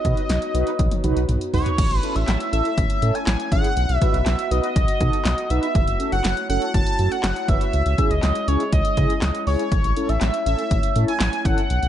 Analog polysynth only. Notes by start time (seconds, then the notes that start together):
0.05 D#4 F#4 B4
0.54 D#4 F#4 B4
1.04 D#4 F#4 B4
1.54 D#4 F#4 B4
2.03 C#4 E4 A4
2.53 C#4 E4 A4
3.02 C#4 E4 A4
3.52 C#4 E4 G#4
4.01 D#4 F#4 B4
4.51 D#4 F#4 B4
5.01 D#4 F#4 A4
5.50 D#4 F#4 B4
6.00 C#4 F#4 A4
6.49 C#4 F#4 A4
6.99 C#4 F#4 A4
7.49 C#4 F#4 B4
7.98 C#4 E4 G#4
8.48 C#4 E4 G#4
8.97 C#4 E4 G#4
9.47 C#4 E4 G#4
9.97 C#4 E4 A4
10.46 C#4 E4 A4
10.96 C#4 E4 A4
11.45 C#4 E4 A4